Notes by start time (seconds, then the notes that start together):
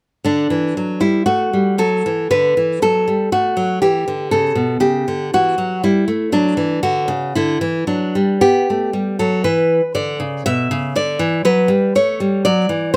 0.24 D3 D4
0.50 E3
0.77 F#3
1.00 G3 E4
1.26 A3 F#4
1.53 G3
1.78 F#3 A4
2.06 E3
2.31 D3 B4
2.57 E3
2.82 F#3 A4
3.08 G3
3.32 A3 F#4
3.57 F#3
3.82 E3 G4
4.08 D3
4.31 C#3 A4
4.55 B2
4.80 C#3 G4
5.08 D3
5.34 E3 F#4
5.58 F#3
5.83 G3 E4
6.08 A3
6.32 F#3 D4
6.57 E3
6.83 D3 F#4
7.08 C#3
7.35 D3 E4
7.61 E3
7.87 F#3 D4
8.15 G3
8.41 B3 G4
8.70 A3
8.93 G3
9.19 F#3 A4
9.44 E3 B4
9.95 D3 D5
10.20 C#3
10.46 B2 E5
10.71 C#3
10.96 D3 D5
11.19 E3
11.45 F#3 B4
11.68 G3
11.95 A3 C#5
12.20 G3
12.45 F#3 D5
12.69 E3